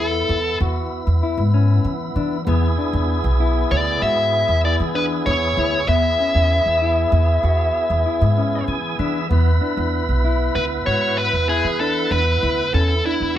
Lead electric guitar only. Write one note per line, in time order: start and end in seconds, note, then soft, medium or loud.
0.00 0.57 A4 medium
3.72 4.03 D5 medium
4.02 4.60 E5 loud
4.65 4.73 D5 medium
4.95 5.04 B4 medium
5.26 5.88 C#5 medium
5.88 8.64 E5 medium
10.55 10.64 B4 medium
10.86 11.18 C#5 medium
11.18 11.49 B4 medium
11.49 11.80 G#4 medium
11.80 12.11 A4 medium
12.12 12.74 B4 medium
12.74 13.03 A4 medium
13.06 13.36 E4 medium